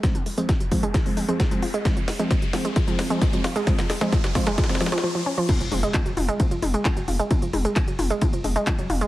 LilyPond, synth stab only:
\new Staff \with { instrumentName = "Synth stab" } { \clef bass \time 4/4 \key f \phrygian \tempo 4 = 132 <f aes c'>16 r8 <f aes c'>16 r8 <f aes c'>16 r8 <f aes c'>8 <f aes c'>16 r16 <f aes c'>16 r8 | <f aes c'>16 r8 <f aes c'>16 r8 <f aes c'>16 r8 <f aes c'>8 <f aes c'>16 r16 <f aes c'>16 r8 | <f aes c'>16 r8 <f aes c'>16 r8 <f aes c'>16 r8 <f aes c'>8 r4 r16 | r1 |
r1 | }